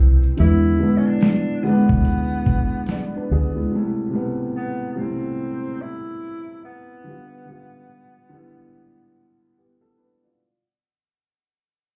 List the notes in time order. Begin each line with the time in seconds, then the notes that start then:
Already playing: C2 G3 C4 E4 B4
0.23 shaker
0.37 E2 D3 G#3 B3 E4, closed hi-hat
0.42 E4
0.78 D3 G#3 B3
0.83 D4
0.98 C#4
1.06 D4
1.21 snare, closed hi-hat
1.63 D3 G#3 B3
1.68 D4
1.89 D2, kick
2.05 closed hi-hat
2.46 kick
2.86 D5, snare, closed hi-hat
3.15 D4 B4
3.31 D2 B3 G#4
3.55 G#3 E4
3.71 C3 G3 A3
3.77 E4
4.10 C3 G3 A3
4.15 B3
4.56 B3
4.92 C3 B3
4.98 G3 A3 C4 E4
5.81 E4
6.65 B3
7.04 D3 G3 B3
7.09 F4
7.45 D3 G3 B3
7.50 F4
8.29 D3 G3 B3
8.35 E4
9.58 B3 G4
9.81 A4
9.98 D4 B4
10.23 F4 D5